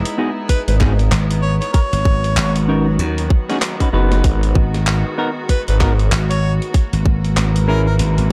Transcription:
Already playing: string section G#3 B3 D#4 E4
0.05 closed hi-hat
0.18 clean electric guitar B3 D#4 F#4 G#4
0.49 harmonica B4, kick, closed hi-hat
0.67 detuned saw bass G#1, harmonica B4, closed hi-hat
0.80 clean electric guitar B3 D#4 F#4 G#4, kick, clap, snare
0.99 closed hi-hat
1.12 slap bass G#1, clap, closed hi-hat
1.31 closed hi-hat
1.42 harmonica C#5
1.60 harmonica C#5, closed hi-hat
1.73 string section D#3 F#3 F#4, harmonica A#4 C#5, kick, closed hi-hat
1.93 slap bass G#1, closed hi-hat
2.05 kick
2.24 closed hi-hat
2.37 slap bass G#1, clap, closed hi-hat
2.56 closed hi-hat
2.68 clean electric guitar C#4 D#4 F#4 A#4
2.99 slap bass D#2, closed hi-hat
3.18 closed hi-hat
3.30 kick
3.49 clean electric guitar C#4 D#4 F#4 G#4, snare, closed hi-hat
3.53 snare
3.56 snare
3.59 clap, snare
3.62 snare, closed hi-hat
3.66 snare
3.71 snare
3.76 snare
3.80 clean electric guitar C#4 D#4 F#4 B4, kick, closed hi-hat
3.93 detuned saw bass F#1, clean electric guitar B3 D#4 F#4 B4
4.12 snare, closed hi-hat
4.24 string section G#3, kick, closed hi-hat
4.43 closed hi-hat
4.55 slap bass G#1, kick
4.74 snare, closed hi-hat
4.87 clap
5.18 clean electric guitar B3 D#4 F#4 A#4
5.49 harmonica B4, kick, closed hi-hat
5.68 detuned saw bass G#1, harmonica B4, closed hi-hat
5.80 clean electric guitar B3 D#4 F#4 A#4, kick, clap, snare
5.99 closed hi-hat
6.12 slap bass G#1, clap, closed hi-hat
6.30 harmonica C#5, closed hi-hat
6.62 closed hi-hat
6.74 string section E3 G#3 A#3, kick, closed hi-hat
6.93 slap bass G#1, closed hi-hat
7.06 kick
7.25 closed hi-hat
7.37 slap bass G#1, clap, closed hi-hat
7.56 closed hi-hat
7.68 clean electric guitar C#4 E4 G#4 A#4, harmonica A#4
7.87 harmonica A#4
7.99 slap bass G#1, closed hi-hat
8.18 slap bass G#1, closed hi-hat

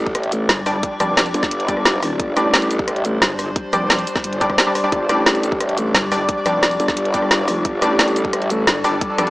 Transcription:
Already playing: wobble bass A1, synth stab G3 D4 D5, synth drone G3 D4 D5, sub drop
0.06 kick
0.15 cross-stick, closed hi-hat
0.23 closed hi-hat
0.32 closed hi-hat, cabasa
0.49 wobble bass G1, snare, closed hi-hat
0.66 synth stab G3 D4 D5, cross-stick, open hi-hat, cabasa
0.83 kick, closed hi-hat
1.00 wobble bass F1, synth stab G3 D4 D5, cross-stick, closed hi-hat, cabasa
1.17 snare, closed hi-hat
1.26 closed hi-hat, cabasa
1.34 wobble bass G1, closed hi-hat, cabasa
1.43 kick, snare, cabasa
1.51 closed hi-hat
1.60 closed hi-hat
1.68 synth stab G3 D4 D5, kick, closed hi-hat, cabasa
1.77 cross-stick
1.85 snare, closed hi-hat
2.03 cross-stick, open hi-hat, cabasa
2.20 wobble bass G1, synth drone C5, kick, closed hi-hat
2.37 wobble bass A1, synth stab G3 D4 D5, cross-stick, closed hi-hat, cabasa
2.54 snare, closed hi-hat
2.62 closed hi-hat, cabasa
2.71 closed hi-hat, cabasa
2.79 kick
2.88 cross-stick, closed hi-hat
2.96 closed hi-hat
3.05 closed hi-hat, cabasa
3.22 wobble bass G1, snare, closed hi-hat
3.39 cross-stick, open hi-hat, cabasa
3.56 kick, closed hi-hat
3.73 wobble bass F1, synth stab G3 D4 D5, cross-stick, closed hi-hat, cabasa
3.90 snare, closed hi-hat
3.99 closed hi-hat, cabasa
4.07 closed hi-hat, cabasa
4.16 kick, snare, cabasa
4.24 wobble bass G1, closed hi-hat
4.33 closed hi-hat
4.41 synth stab G3 D4 D5, kick, closed hi-hat, cabasa
4.50 kick, cross-stick
4.58 snare, closed hi-hat
4.67 synth stab G3 D4 D5
4.75 cross-stick, open hi-hat, cabasa
4.84 synth stab G3 D4 D5
4.92 wobble bass G1, synth drone D5, kick, closed hi-hat
5.09 wobble bass A1, synth stab G3 D4 D5, cross-stick, closed hi-hat, cabasa
5.26 snare, closed hi-hat
5.35 closed hi-hat, cabasa
5.43 closed hi-hat, cabasa
5.52 kick
5.60 cross-stick, closed hi-hat
5.69 closed hi-hat
5.78 closed hi-hat, cabasa
5.95 wobble bass G1, snare, closed hi-hat
6.12 synth stab G3 D4 D5, cross-stick, open hi-hat, cabasa
6.29 kick, closed hi-hat
6.46 wobble bass F1, synth stab G3 D4 D5, cross-stick, closed hi-hat, cabasa
6.63 snare, closed hi-hat
6.71 closed hi-hat, cabasa
6.80 wobble bass G1, closed hi-hat, cabasa
6.88 kick, snare, cabasa
6.97 closed hi-hat
7.05 closed hi-hat
7.14 synth stab G3 D4 D5, kick, closed hi-hat, cabasa
7.22 cross-stick
7.31 snare, closed hi-hat
7.39 wobble bass F#1
7.48 cross-stick, open hi-hat, cabasa
7.65 wobble bass G1, synth drone A4, kick, closed hi-hat
7.82 wobble bass A1, synth stab G3 D4 D5, cross-stick, closed hi-hat, cabasa
7.99 snare, closed hi-hat
8.08 closed hi-hat, cabasa
8.16 closed hi-hat, cabasa
8.25 kick
8.33 cross-stick, closed hi-hat
8.42 closed hi-hat
8.50 closed hi-hat, cabasa
8.67 wobble bass G1, snare, closed hi-hat
8.84 synth stab G3 D4 D5, cross-stick, open hi-hat, cabasa
9.01 kick, closed hi-hat
9.18 wobble bass F1, synth stab G3 D4 D5, cross-stick, closed hi-hat, cabasa
9.27 closed hi-hat

